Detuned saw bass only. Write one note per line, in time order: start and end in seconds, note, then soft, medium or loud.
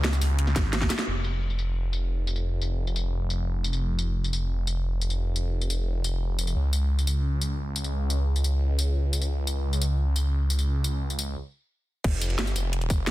0.00 0.20 C#2 loud
0.21 0.54 C#2 loud
0.56 0.89 G#1 loud
1.07 6.54 F1 medium
6.56 11.36 C#2 medium
12.04 12.37 F1 loud
12.39 12.54 G1 loud
12.56 12.89 F1 loud
12.90 13.11 F1 loud